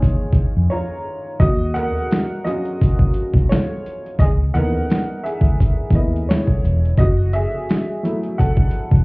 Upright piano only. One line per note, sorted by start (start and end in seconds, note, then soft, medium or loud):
0.00 1.35 D#3 medium
0.00 1.36 D#4 medium
0.00 0.71 F4 medium
0.00 1.38 G#4 medium
0.00 0.69 C#5 medium
0.70 1.37 F4 medium
0.70 1.36 C#5 medium
0.70 1.36 A#5 medium
1.40 1.73 F#4 medium
1.40 1.76 D#5 loud
1.74 2.41 A#4 medium
1.74 2.40 F#5 loud
2.45 2.93 F#3 medium
2.45 2.94 C#4 soft
2.45 2.94 F4 medium
2.45 3.46 F#4 medium
2.45 3.45 D#5 medium
3.49 4.16 F4 medium
3.49 4.21 C#5 medium
4.19 4.29 G#4 medium
4.19 4.27 D#5 loud
4.54 5.03 E3 medium
4.54 5.03 B3 medium
4.54 5.03 D#4 medium
4.54 5.20 A#4 medium
4.54 5.26 F#5 loud
5.24 6.25 G#4 medium
5.24 6.31 E5 medium
5.94 6.25 B3 soft
5.94 6.25 E4 soft
5.94 6.26 D#5 medium
6.29 6.95 E4 medium
6.29 7.00 C#5 medium
6.98 7.31 F#4 medium
6.98 7.34 D#5 medium
7.33 8.35 G#4 medium
7.33 8.34 E5 loud
8.03 9.04 F#3 medium
8.03 9.04 A3 soft
8.03 9.04 E4 medium
8.38 9.04 A4 medium
8.38 9.04 F#5 loud